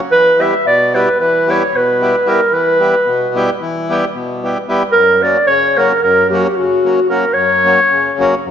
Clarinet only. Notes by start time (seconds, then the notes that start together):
0.12 B4
0.41 E5
0.67 D5
0.95 B4
1.20 B4
1.50 C#5
1.76 B4
2.29 A#4
2.53 B4
4.92 A#4
5.22 D5
5.47 C#5
5.77 A#4
6.03 A#4
6.30 G4
6.38 F#4
6.44 G4
6.56 F#4
7.09 A#4
7.33 C#5